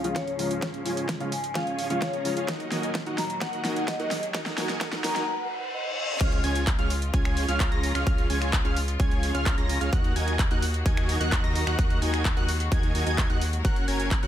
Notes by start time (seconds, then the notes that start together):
Already playing: C#2 G#2 F3 F5, riser
0.04 C#3 F3 G#3 C#4 F4 G#4 C#5 F5, closed hi-hat
0.16 C#5, kick, snare, closed hi-hat
0.28 C#4 F4 G#4 C#5 A#5, closed hi-hat
0.38 C#3 F3 G#3 F4, open hi-hat
0.51 C#4 F4 G#4 C#5 F5, closed hi-hat
0.62 kick, snare, closed hi-hat
0.74 closed hi-hat
0.85 C#3 F3 G#3 C#4 F4 G#4 C#5 G#5, open hi-hat
0.97 closed hi-hat
1.09 kick, snare, closed hi-hat
1.20 C#3 F3 G#3 C#4 F4 G#4 C#5 F5, closed hi-hat
1.32 G#5, open hi-hat
1.44 closed hi-hat
1.55 C#3 F3 G#3 C#4 F4 G#4 C#5 F5 G#5, kick, snare, closed hi-hat
1.67 closed hi-hat
1.79 open hi-hat
1.90 C#3 F3 G#3 C#4 F4 G#4 C#5 F5, closed hi-hat
2.02 C#5, kick, snare, closed hi-hat
2.13 C#4 F4 G#4 C#5 A#5, closed hi-hat
2.25 C#3 F3 G#3 F4, open hi-hat
2.37 C#4 F4 G#4 C#5 F5, closed hi-hat
2.48 D#2 A#2 F#3 D#4 F#4 A#4 D#5 F#5, kick, snare, closed hi-hat
2.60 closed hi-hat
2.71 D#3 F#3 A#3 D#4 F#4 A#4 D#5 G#5, snare, open hi-hat
2.83 closed hi-hat
2.95 kick, snare, closed hi-hat
3.06 D#3 F#3 A#3 D#4 F#4 A#4 D#5 F#5, closed hi-hat
3.18 A#5, snare, open hi-hat
3.30 closed hi-hat
3.41 D#4 F#4 A#4 D#5 F#5, kick, snare, closed hi-hat
3.53 closed hi-hat
3.64 D#3 F#3 A#3 D#4 F#4 A#4 D#5 G#5, snare, open hi-hat
3.76 closed hi-hat
3.88 D#5, kick, snare, closed hi-hat
3.99 D#3 F#3 A#3 D#4 F#4 A#4 D#5 F#5, closed hi-hat
4.11 snare, open hi-hat
4.23 closed hi-hat
4.34 D#4 F#4 A#4 D#5 F#5, kick, snare, closed hi-hat
4.46 snare, closed hi-hat
4.57 D#3 F#3 A#3 D#4 F#4 A#4 D#5 G#5, snare, open hi-hat
4.69 snare, closed hi-hat
4.81 D#4 F#4 A#4 D#5 F#5, kick, snare, closed hi-hat
4.93 snare, closed hi-hat
5.04 D#3 F#3 A#3 D#4 F#4 A#4 D#5 G#5 A#5, snare, open hi-hat
5.16 snare, closed hi-hat
5.28 F#5, reverse cymbal
5.74 D#5
6.21 C#2 C#3 G#3 C#4 F4 G#4 C#5 F5 F6, kick, closed hi-hat, crash
6.32 closed hi-hat
6.44 C#2 C#4 F4 G#4 C#5 G#5 G#6, open hi-hat
6.55 closed hi-hat
6.67 kick, clap, closed hi-hat
6.79 C#2 C#4 F4 G#4 C#5 F5 F6, closed hi-hat
6.90 open hi-hat
7.02 closed hi-hat
7.14 C#2 C#4 F4 G#4 C#5 G#5 G#6, kick, closed hi-hat
7.25 finger snap, closed hi-hat
7.37 open hi-hat
7.48 C#2 C#4 F4 G#4 C#5 F5 F6, closed hi-hat
7.60 kick, clap, closed hi-hat
7.72 C#2 C#4 F4 G#4 C#5 A#5 A#6, closed hi-hat
7.83 open hi-hat
7.95 C#2 C#4 F4 G#4 C#5 F5 F6, finger snap, closed hi-hat
8.07 C#2 C#4 F4 G#4 C#5 F5 F6, kick, closed hi-hat
8.18 closed hi-hat
8.30 C#2 C#4 F4 G#4 C#5 G#5 G#6, open hi-hat
8.42 finger snap, closed hi-hat
8.53 kick, clap, closed hi-hat
8.65 C#2 C#4 F4 G#4 C#5 F5 F6, closed hi-hat
8.77 open hi-hat
8.88 closed hi-hat
9.00 C#2 C#4 F4 G#4 C#5 G#5 G#6, kick, closed hi-hat
9.11 closed hi-hat
9.23 open hi-hat
9.34 C#2 C#4 F4 G#4 C#5 F5 F6, closed hi-hat
9.46 kick, clap, closed hi-hat
9.58 C#2 C#4 F4 G#4 C#5 A#5 A#6, closed hi-hat
9.69 open hi-hat
9.81 C#2 C#4 F4 G#4 C#5 F5 F6, closed hi-hat
9.93 D#2 D#3 A#3 D#4 F#4 A#4 D#5 F#5 F#6, kick, closed hi-hat
10.04 closed hi-hat
10.16 D#2 D#4 F#4 A#4 D#5 G#5 G#6, open hi-hat
10.28 closed hi-hat
10.39 kick, clap, closed hi-hat
10.51 D#2 D#4 F#4 A#4 D#5 F#5 F#6, closed hi-hat
10.62 open hi-hat
10.74 closed hi-hat
10.86 D#2 D#4 F#4 A#4 D#5 G#5 G#6, kick, closed hi-hat
10.97 finger snap, closed hi-hat
11.09 open hi-hat
11.20 D#2 D#4 F#4 A#4 D#5 F#5 F#6, closed hi-hat
11.32 kick, clap, closed hi-hat
11.44 D#2 D#4 F#4 A#4 D#5 A#5 A#6, closed hi-hat
11.55 open hi-hat
11.67 D#2 D#4 F#4 A#4 D#5 F#5 F#6, finger snap, closed hi-hat
11.79 D#2 G#3 D#4 F#4 A#4 D#5 F#5 F#6, kick, closed hi-hat
11.90 closed hi-hat
12.02 D#2 D#4 F#4 A#4 D#5 G#5 G#6, open hi-hat
12.14 finger snap, closed hi-hat
12.25 kick, clap, closed hi-hat
12.37 D#2 D#4 F#4 A#4 D#5 F#5 F#6, closed hi-hat
12.49 open hi-hat
12.60 closed hi-hat
12.72 D#2 D#4 F#4 A#4 D#5 G#5 G#6, kick, closed hi-hat
12.83 closed hi-hat
12.95 D#2 D#4 F#4 A#4 D#5 G#5 G#6, open hi-hat
13.06 D#2 D#4 F#4 A#4 D#5 G#5 G#6, closed hi-hat
13.18 kick, clap, closed hi-hat
13.30 D#2 D#4 F#4 A#4 D#5 F#5 F#6, closed hi-hat
13.41 open hi-hat
13.53 closed hi-hat
13.65 F#1 F#3 C#4 F#4 A#4 C#5 F#5 F#6, kick, closed hi-hat
13.76 closed hi-hat
13.88 F#1 C#4 F#4 A#4 C#5 G#5 G#6, open hi-hat
14.00 closed hi-hat
14.11 kick, clap, closed hi-hat
14.23 F#1 C#4 F#4 A#4 C#5 F#5 F#6, closed hi-hat